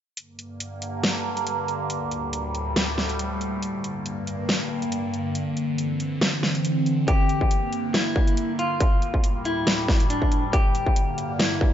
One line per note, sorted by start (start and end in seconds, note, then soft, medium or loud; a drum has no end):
0.17 1.88 G2 medium
0.17 1.88 D3 medium
0.17 1.88 A#3 medium
0.17 closed hi-hat medium
0.39 closed hi-hat soft
0.60 closed hi-hat medium
0.82 closed hi-hat medium
1.04 snare loud
1.04 closed hi-hat medium
1.37 closed hi-hat medium
1.47 closed hi-hat medium
1.68 closed hi-hat soft
1.90 3.61 D2 medium
1.90 3.61 A2 medium
1.90 3.61 G3 medium
1.90 closed hi-hat medium
2.11 closed hi-hat soft
2.33 closed hi-hat medium
2.55 closed hi-hat medium
2.76 snare loud
2.76 closed hi-hat medium
2.98 snare medium
3.10 closed hi-hat soft
3.19 closed hi-hat medium
3.41 closed hi-hat soft
3.62 5.34 G2 medium
3.62 8.77 D3 medium
3.62 5.34 A#3 loud
3.62 closed hi-hat medium
3.84 closed hi-hat soft
4.06 closed hi-hat medium
4.27 closed hi-hat soft
4.49 snare loud
4.49 closed hi-hat medium
4.82 closed hi-hat soft
4.92 closed hi-hat medium
5.14 closed hi-hat soft
5.35 7.06 E3 medium
5.35 7.06 C4 medium
5.35 closed hi-hat medium
5.57 closed hi-hat soft
5.78 closed hi-hat medium
6.00 closed hi-hat soft
6.21 snare loud
6.21 closed hi-hat medium
6.43 snare medium
6.55 closed hi-hat soft
6.65 closed hi-hat medium
6.86 closed hi-hat soft
7.08 8.79 G2 medium
7.08 8.79 A#3 medium
7.08 7.86 G4 medium
7.08 kick loud
7.08 closed hi-hat medium
7.29 closed hi-hat soft
7.41 kick medium
7.51 closed hi-hat medium
7.72 closed hi-hat soft
7.94 8.51 E4 medium
7.94 snare loud
7.94 closed hi-hat medium
8.16 kick medium
8.27 closed hi-hat soft
8.37 closed hi-hat medium
8.59 9.37 F4 medium
8.59 closed hi-hat soft
8.80 10.51 D2 medium
8.80 10.51 A2 medium
8.80 10.51 G3 medium
8.80 kick loud
8.80 closed hi-hat medium
9.02 closed hi-hat soft
9.14 kick medium
9.24 closed hi-hat medium
9.45 10.02 E4 medium
9.45 closed hi-hat soft
9.67 snare loud
9.67 closed hi-hat medium
9.88 kick medium
9.88 snare medium
10.00 closed hi-hat soft
10.10 10.44 D4 medium
10.10 closed hi-hat medium
10.22 kick medium
10.32 closed hi-hat soft
10.53 11.73 G2 medium
10.53 11.73 D3 medium
10.53 11.73 A#3 medium
10.53 11.32 G4 medium
10.53 kick loud
10.53 closed hi-hat medium
10.75 closed hi-hat soft
10.86 kick medium
10.96 closed hi-hat medium
11.18 closed hi-hat medium
11.39 11.73 E4 medium
11.39 snare loud
11.39 closed hi-hat medium
11.61 kick medium